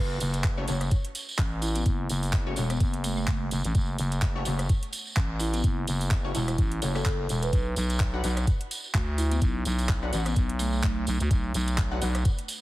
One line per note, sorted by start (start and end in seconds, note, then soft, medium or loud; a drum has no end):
0.00 0.19 F#1 loud
0.20 0.66 F#1 loud
0.20 open hi-hat loud
0.20 tambourine medium
0.34 closed hi-hat medium
0.34 tambourine medium
0.44 kick loud
0.44 clap loud
0.44 closed hi-hat medium
0.57 0.65 A3 loud
0.57 0.65 C#4 medium
0.57 0.65 F#4 medium
0.57 0.65 C#5 loud
0.68 0.90 F#1 medium
0.68 0.83 A3 medium
0.68 0.83 C#4 medium
0.68 0.83 F#4 medium
0.68 0.83 C#5 medium
0.68 open hi-hat loud
0.68 tambourine medium
0.81 cross-stick medium
0.81 closed hi-hat medium
0.81 tambourine soft
0.91 kick loud
0.91 closed hi-hat medium
0.91 tambourine soft
1.05 closed hi-hat medium
1.15 open hi-hat loud
1.15 tambourine medium
1.29 tambourine medium
1.39 1.84 A1 loud
1.39 kick loud
1.39 clap loud
1.39 closed hi-hat medium
1.62 1.73 E4 medium
1.62 open hi-hat loud
1.62 tambourine medium
1.75 1.94 B3 medium
1.75 closed hi-hat medium
1.75 tambourine medium
1.85 2.08 F#1 loud
1.85 kick loud
1.85 closed hi-hat medium
1.85 tambourine soft
2.09 2.55 F#1 loud
2.09 open hi-hat loud
2.09 tambourine medium
2.23 open hi-hat medium
2.23 tambourine medium
2.33 kick loud
2.33 clap loud
2.33 closed hi-hat medium
2.46 2.54 A3 medium
2.46 2.54 C#4 medium
2.46 2.54 F#4 medium
2.46 2.54 C#5 loud
2.56 2.79 E1 loud
2.56 2.72 A3 medium
2.56 2.72 C#4 medium
2.56 2.72 F#4 medium
2.56 2.72 C#5 medium
2.56 open hi-hat loud
2.56 tambourine medium
2.70 3.02 B3 medium
2.70 cross-stick medium
2.70 closed hi-hat medium
2.70 tambourine soft
2.80 3.26 F#1 medium
2.80 kick loud
2.80 closed hi-hat medium
2.80 tambourine soft
2.94 closed hi-hat medium
3.04 3.15 A3 medium
3.04 open hi-hat loud
3.04 tambourine loud
3.17 3.24 A3 medium
3.17 tambourine soft
3.27 3.50 F#1 medium
3.27 kick loud
3.27 clap loud
3.27 closed hi-hat medium
3.51 3.62 F#1 medium
3.51 open hi-hat loud
3.51 tambourine loud
3.64 3.73 A1 medium
3.64 closed hi-hat medium
3.64 tambourine medium
3.75 3.97 F#1 loud
3.75 kick loud
3.75 closed hi-hat medium
3.75 tambourine soft
3.98 4.44 F#1 loud
3.98 open hi-hat loud
3.98 tambourine medium
4.12 closed hi-hat medium
4.12 tambourine medium
4.22 kick loud
4.22 clap loud
4.22 closed hi-hat medium
4.35 4.43 A3 medium
4.35 4.43 C#4 medium
4.35 4.43 F#4 medium
4.35 4.43 C#5 loud
4.45 4.68 F#1 loud
4.45 4.61 A3 medium
4.45 4.61 C#4 medium
4.45 4.61 F#4 medium
4.45 4.61 C#5 medium
4.45 open hi-hat loud
4.45 tambourine medium
4.59 cross-stick medium
4.59 closed hi-hat medium
4.59 tambourine medium
4.69 kick loud
4.69 closed hi-hat medium
4.69 tambourine soft
4.83 closed hi-hat medium
4.93 open hi-hat loud
4.93 tambourine loud
5.07 tambourine medium
5.17 5.62 A1 medium
5.17 kick loud
5.17 clap loud
5.17 closed hi-hat medium
5.39 5.51 E4 medium
5.39 open hi-hat loud
5.39 tambourine loud
5.54 5.72 B3 medium
5.54 closed hi-hat medium
5.54 tambourine medium
5.64 5.86 F#1 loud
5.64 kick loud
5.64 closed hi-hat medium
5.64 tambourine soft
5.87 6.33 F#1 loud
5.87 open hi-hat loud
5.87 tambourine loud
6.01 open hi-hat medium
6.01 tambourine medium
6.11 kick loud
6.11 clap loud
6.11 closed hi-hat medium
6.24 6.32 A3 medium
6.24 6.32 C#4 medium
6.24 6.32 F#4 medium
6.24 6.32 C#5 loud
6.35 6.57 E1 loud
6.35 6.50 A3 medium
6.35 6.50 C#4 medium
6.35 6.43 E4 medium
6.35 6.50 F#4 medium
6.35 6.50 C#5 medium
6.35 open hi-hat loud
6.35 tambourine loud
6.48 6.55 E4 medium
6.48 cross-stick medium
6.48 closed hi-hat soft
6.48 tambourine medium
6.58 6.80 A1 loud
6.58 kick loud
6.58 closed hi-hat medium
6.58 tambourine soft
6.72 closed hi-hat soft
6.82 7.04 F#1 loud
6.82 6.92 A3 medium
6.82 6.92 C#4 medium
6.82 6.92 F#4 medium
6.82 6.92 C#5 medium
6.82 open hi-hat loud
6.82 tambourine loud
6.95 7.03 A3 medium
6.95 7.03 C#4 medium
6.95 7.03 F#4 medium
6.95 7.02 A4 medium
6.95 7.03 C#5 loud
6.95 cross-stick medium
6.95 tambourine medium
7.06 7.28 F#1 medium
7.06 kick loud
7.06 clap loud
7.06 closed hi-hat medium
7.29 7.51 E1 medium
7.29 open hi-hat loud
7.29 tambourine loud
7.42 7.58 B4 medium
7.42 closed hi-hat medium
7.42 tambourine medium
7.53 7.75 B1 loud
7.53 kick loud
7.53 closed hi-hat medium
7.53 tambourine soft
7.76 8.22 B1 loud
7.76 open hi-hat loud
7.76 tambourine medium
7.90 closed hi-hat medium
7.90 tambourine medium
8.00 kick loud
8.00 clap loud
8.00 closed hi-hat medium
8.13 8.21 D4 medium
8.13 8.21 F#4 medium
8.13 8.21 B4 medium
8.13 8.21 F#5 loud
8.24 8.46 B1 loud
8.24 8.39 D4 medium
8.24 8.39 F#4 medium
8.24 8.39 B4 medium
8.24 8.39 F#5 medium
8.24 open hi-hat loud
8.24 tambourine medium
8.37 cross-stick medium
8.37 closed hi-hat soft
8.37 tambourine medium
8.47 kick loud
8.47 closed hi-hat medium
8.47 tambourine soft
8.61 closed hi-hat soft
8.71 open hi-hat loud
8.71 tambourine medium
8.84 tambourine soft
8.95 9.40 D2 medium
8.95 kick loud
8.95 clap loud
8.95 closed hi-hat medium
9.18 9.29 E4 medium
9.18 open hi-hat loud
9.18 tambourine medium
9.31 9.50 B3 medium
9.31 closed hi-hat medium
9.31 tambourine medium
9.41 9.64 B1 loud
9.41 kick loud
9.41 closed hi-hat medium
9.41 tambourine soft
9.65 10.11 B1 loud
9.65 open hi-hat loud
9.65 tambourine medium
9.78 open hi-hat medium
9.78 tambourine soft
9.89 kick loud
9.89 clap loud
9.89 closed hi-hat medium
10.02 10.10 D4 loud
10.02 10.10 F#4 medium
10.02 10.10 B4 medium
10.02 10.10 F#5 loud
10.13 10.35 A1 medium
10.13 10.28 D4 medium
10.13 10.28 F#4 medium
10.13 10.28 B4 medium
10.13 10.28 F#5 medium
10.13 open hi-hat loud
10.13 tambourine medium
10.26 10.58 B3 medium
10.26 cross-stick medium
10.26 closed hi-hat medium
10.26 tambourine soft
10.36 10.82 B1 loud
10.36 kick loud
10.36 closed hi-hat medium
10.36 tambourine soft
10.49 closed hi-hat medium
10.59 10.71 A3 medium
10.59 open hi-hat loud
10.59 tambourine loud
10.73 10.80 A3 medium
10.73 tambourine medium
10.84 11.06 B1 medium
10.84 10.92 A3 medium
10.84 kick loud
10.84 clap loud
10.84 closed hi-hat medium
11.07 11.18 B1 medium
11.07 open hi-hat loud
11.07 tambourine medium
11.20 11.29 D2 loud
11.20 closed hi-hat medium
11.20 tambourine soft
11.31 11.53 B1 loud
11.31 kick loud
11.31 closed hi-hat medium
11.31 tambourine soft
11.54 12.00 B1 loud
11.54 open hi-hat loud
11.54 tambourine medium
11.68 closed hi-hat medium
11.68 tambourine medium
11.78 kick loud
11.78 clap loud
11.78 closed hi-hat medium
11.91 11.99 D4 loud
11.91 11.99 F#4 medium
11.91 11.99 B4 medium
11.91 11.99 F#5 loud
12.02 12.24 B1 loud
12.02 12.17 D4 medium
12.02 12.17 F#4 medium
12.02 12.17 B4 medium
12.02 12.17 F#5 medium
12.02 open hi-hat loud
12.02 tambourine medium
12.15 cross-stick medium
12.15 closed hi-hat medium
12.15 tambourine soft
12.25 kick loud
12.25 closed hi-hat medium
12.25 tambourine soft
12.39 closed hi-hat medium
12.48 open hi-hat loud
12.48 tambourine medium